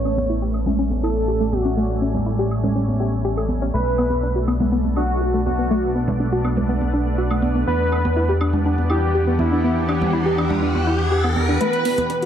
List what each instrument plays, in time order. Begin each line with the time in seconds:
Already playing: analog synth bass A1, ambient pad G3 A3 C#4, analog synth lead C#5
0.05 synth pluck C#4, high woodblock
0.18 high conga
0.30 synth pluck E4
0.42 synth pluck G4
0.54 high woodblock
0.66 synth pluck C#4, low conga
0.79 synth pluck C#4
0.91 high conga
1.03 synth pluck E4, analog synth lead A4, high woodblock
1.28 synth pluck G4
1.40 synth pluck A3
1.52 analog synth lead F#4, high conga
1.65 synth pluck C#4
1.77 synth pluck A3
2.02 synth pluck C#4
2.14 high conga, low conga
2.26 synth pluck E4
2.39 synth pluck G4
2.51 high woodblock
2.63 synth pluck C#4, low conga
2.75 synth pluck C#4
2.88 high conga
3.00 synth pluck G4
3.25 synth pluck G4
3.37 synth pluck A4, high woodblock
3.49 high conga
3.62 synth pluck C#4
3.74 analog synth bass B1, synth pluck A3, ambient pad B3 D4, analog synth lead B4
3.98 synth pluck B3, high woodblock
4.10 high conga
4.23 synth pluck D4
4.36 synth pluck F#4
4.48 synth pluck B3, high woodblock
4.60 synth pluck B3, low conga
4.72 synth pluck B3
4.84 high conga
4.96 synth pluck D4, analog synth lead F#4, high woodblock
5.21 synth pluck F#4
5.34 synth pluck A3
5.46 analog synth lead F#4, high conga
5.58 synth pluck B3
5.71 synth pluck A3
5.95 synth pluck B3
6.08 high conga, low conga
6.20 synth pluck D4
6.32 synth pluck F#4
6.44 synth pluck B3, high woodblock
6.57 synth pluck B3, low conga
6.69 synth pluck B3
6.81 high conga
6.93 synth pluck D4
7.18 synth pluck F#4
7.31 synth pluck A3, high woodblock
7.42 high conga
7.55 synth pluck B3
7.67 analog synth bass E2, ambient pad E3 G4 F#5, synth pluck B3, analog synth lead B4, riser
7.92 synth pluck D4, high woodblock
8.05 high conga
8.16 synth pluck E4
8.29 synth pluck G4
8.41 synth pluck D4, high woodblock
8.53 synth pluck D4, low conga
8.66 synth pluck D4
8.78 high conga
8.90 synth pluck E4, analog synth lead G4, high woodblock
9.15 synth pluck G4
9.27 synth pluck B3
9.39 analog synth lead E4, high conga
9.52 synth pluck D4
9.64 synth pluck B3
9.89 synth pluck D4, high woodblock
10.01 high conga, low conga
10.13 synth pluck E4
10.26 synth pluck G4
10.38 synth pluck D4, high woodblock
10.50 synth pluck D4, low conga
10.62 synth pluck D4
10.75 high conga
10.87 synth pluck E4
11.12 synth pluck G4
11.23 synth pluck B3, high woodblock
11.36 high conga
11.49 synth pluck D4
11.61 ambient pad B2 B3 C#4 D4 A4, synth pluck A3, analog synth lead B4, violin section B4, closed hi-hat
11.73 closed hi-hat
11.85 synth pluck B3, open hi-hat
11.98 closed hi-hat, high conga
12.10 synth pluck D4, closed hi-hat
12.22 synth pluck F#4, closed hi-hat